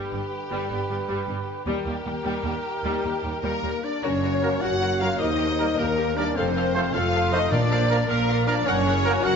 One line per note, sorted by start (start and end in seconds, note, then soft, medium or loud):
0.00 1.62 D3 soft
0.00 0.11 G3 soft
0.00 1.61 G4 soft
0.00 1.62 G4 soft
0.00 1.62 B4 soft
0.12 0.20 G1 soft
0.12 0.21 G2 soft
0.12 0.20 G3 soft
0.12 0.21 B3 soft
0.51 0.59 G1 soft
0.51 0.59 G2 soft
0.51 0.69 G3 medium
0.51 0.70 G3 medium
0.70 0.78 G1 soft
0.70 0.78 G2 soft
0.70 0.78 G3 soft
0.70 0.79 B3 soft
0.90 0.98 G1 soft
0.90 0.97 G2 soft
0.90 0.98 G3 soft
1.08 1.17 G1 medium
1.08 1.16 G2 medium
1.08 1.26 G3 soft
1.08 1.27 G3 soft
1.27 1.36 G1 soft
1.27 1.35 G2 soft
1.27 1.36 G3 soft
1.27 1.36 B3 soft
1.66 1.74 D#2 medium
1.66 1.75 D#2 medium
1.66 3.40 D#3 medium
1.66 1.85 G3 medium
1.66 3.40 G4 medium
1.66 3.80 A#4 medium
1.86 1.94 D#2 soft
1.86 1.94 G3 soft
1.86 1.94 A#3 soft
2.05 2.13 D#2 soft
2.05 2.14 G3 soft
2.24 2.32 D#2 medium
2.24 2.33 D#2 medium
2.24 2.42 G3 medium
2.24 2.43 G3 medium
2.43 2.52 D#2 soft
2.43 2.51 G3 soft
2.43 2.53 A#3 soft
2.83 2.91 D#2 medium
2.83 2.92 D#2 medium
2.83 3.03 G3 medium
3.04 3.12 D#2 soft
3.04 3.13 D#2 soft
3.04 3.12 G3 soft
3.04 3.13 A#3 soft
3.22 3.31 D#2 soft
3.22 3.32 D#2 soft
3.22 3.30 G3 soft
3.22 3.32 G3 soft
3.43 3.51 D#2 medium
3.43 3.60 G3 soft
3.43 3.62 G3 soft
3.43 3.82 A#3 medium
3.43 3.81 A#4 medium
3.43 3.86 A#4 medium
3.43 3.81 A#4 medium
3.61 3.71 D#2 soft
3.61 3.72 D#2 soft
3.61 3.69 G3 soft
3.61 3.72 A#3 soft
3.83 4.03 D4 medium
3.83 4.04 D5 medium
3.83 4.03 D5 medium
3.83 4.04 D5 medium
3.83 4.05 D5 medium
4.02 4.55 F#1 medium
4.02 4.55 F#2 medium
4.02 4.63 C#4 medium
4.02 4.11 F#4 medium
4.02 4.11 A#4 medium
4.02 4.63 C#5 medium
4.02 4.62 C#5 medium
4.02 4.61 C#5 medium
4.02 5.23 C#5 medium
4.23 4.31 F#4 medium
4.23 4.31 A#4 medium
4.42 4.49 F#3 medium
4.42 4.49 A#3 medium
4.42 4.50 F#4 soft
4.42 4.49 A#4 medium
4.42 4.50 A#4 medium
4.61 5.13 F#1 medium
4.61 5.14 F#2 medium
4.61 5.01 F#4 medium
4.61 4.70 F#4 medium
4.61 4.70 A#4 medium
4.61 5.02 F#5 medium
4.61 5.00 F#5 medium
4.61 5.01 F#5 medium
4.81 4.89 F#4 medium
4.81 4.89 A#4 medium
5.00 5.08 F#3 medium
5.00 5.08 A#3 medium
5.00 5.11 F4 medium
5.00 5.08 F#4 soft
5.00 5.08 A#4 soft
5.00 5.08 A#4 medium
5.00 5.18 F5 medium
5.00 5.20 F5 medium
5.00 5.18 F5 medium
5.00 5.21 F5 medium
5.19 5.71 D#2 medium
5.19 5.77 D#4 medium
5.19 5.27 G4 medium
5.19 5.27 A#4 medium
5.19 5.80 C5 medium
5.19 5.80 D#5 medium
5.19 5.81 D#5 medium
5.19 5.77 D#5 medium
5.38 5.46 G4 medium
5.38 5.46 A#4 medium
5.58 5.67 G3 medium
5.58 5.66 A#3 medium
5.58 5.66 G4 medium
5.58 5.66 A#4 medium
5.77 6.29 D#2 medium
5.77 6.30 D#2 medium
5.77 6.17 A#3 medium
5.77 5.86 G4 medium
5.77 5.85 A#4 medium
5.77 6.36 A#4 medium
5.77 6.17 A#4 medium
5.77 6.19 A#4 medium
5.77 6.18 A#4 medium
5.97 6.05 G4 medium
5.97 6.05 A#4 medium
6.15 6.24 G3 medium
6.15 6.24 A#3 medium
6.15 6.35 D4 medium
6.15 6.25 G4 medium
6.15 6.24 A#4 medium
6.15 6.25 A#4 medium
6.15 6.25 D5 medium
6.15 6.36 D5 medium
6.15 6.37 D5 medium
6.15 6.36 D5 medium
6.34 6.87 F1 medium
6.34 6.87 F2 medium
6.34 6.93 C4 medium
6.34 6.54 A4 medium
6.34 6.45 A4 medium
6.34 6.96 C5 medium
6.34 6.93 C5 medium
6.34 6.94 C5 medium
6.34 6.45 F5 medium
6.54 6.64 A4 medium
6.54 6.74 A#4 medium
6.54 6.64 F5 medium
6.75 6.82 F3 medium
6.75 6.82 A3 medium
6.75 6.84 A4 medium
6.75 6.82 C5 medium
6.75 6.94 C5 medium
6.75 6.84 F5 medium
6.93 7.44 F1 medium
6.93 7.45 F2 medium
6.93 7.32 F4 loud
6.93 7.54 A4 medium
6.93 7.02 A4 medium
6.93 7.32 F5 medium
6.93 7.31 F5 medium
6.93 7.02 F5 medium
6.93 7.34 F5 medium
7.16 7.23 A4 medium
7.16 7.23 F5 medium
7.32 7.39 F3 medium
7.32 7.39 A3 medium
7.32 7.53 D#4 loud
7.32 7.41 A4 medium
7.32 7.39 C5 medium
7.32 7.53 D#5 medium
7.32 7.52 D#5 medium
7.32 7.51 D#5 medium
7.32 7.52 D#5 medium
7.32 7.41 F5 medium
7.50 8.02 A#1 medium
7.50 8.02 A#2 medium
7.50 8.05 A#2 medium
7.50 7.92 D4 loud
7.50 7.73 A#4 medium
7.50 7.60 A#4 medium
7.50 8.07 D5 medium
7.50 8.08 D5 medium
7.50 8.09 D5 medium
7.50 7.60 F5 medium
7.71 7.79 A#4 medium
7.71 7.92 C5 medium
7.71 7.79 F5 medium
7.90 7.97 F3 medium
7.90 7.97 A#3 medium
7.90 7.97 A#4 medium
7.90 7.98 A#4 medium
7.90 8.68 D5 medium
7.90 7.98 F5 medium
8.08 8.60 A#1 medium
8.08 8.60 A#2 medium
8.08 8.46 A#3 medium
8.08 8.46 A#4 medium
8.08 8.47 A#4 medium
8.08 8.17 A#4 medium
8.08 8.17 F5 medium
8.29 8.36 A#4 medium
8.29 8.36 F5 medium
8.46 8.54 F3 medium
8.46 8.55 A#3 medium
8.46 8.66 D4 loud
8.46 8.55 A#4 medium
8.46 8.54 A#4 medium
8.46 8.52 D5 medium
8.46 8.55 D5 medium
8.46 8.66 D5 medium
8.46 8.68 D5 medium
8.46 8.55 F5 medium
8.65 9.17 F#1 loud
8.65 9.17 F#2 medium
8.65 9.24 C#4 loud
8.65 8.88 A#4 medium
8.65 8.75 A#4 medium
8.65 9.22 C#5 loud
8.65 9.24 C#5 medium
8.65 9.26 C#5 loud
8.65 9.23 C#5 loud
8.65 8.75 F#5 medium
8.87 9.07 G#4 medium
8.87 8.94 A#4 medium
8.87 8.95 F#5 medium
9.05 9.12 F#3 medium
9.05 9.12 A#3 medium
9.05 9.36 F#4 medium
9.05 9.12 A#4 medium
9.05 9.13 A#4 medium
9.05 9.14 F#5 medium
9.22 9.36 F#1 medium
9.22 9.36 F#2 loud
9.22 9.36 F#4 loud
9.22 9.33 A#4 medium
9.22 9.36 F#5 loud
9.22 9.36 F#5 medium
9.22 9.36 F#5 loud
9.22 9.33 F#5 medium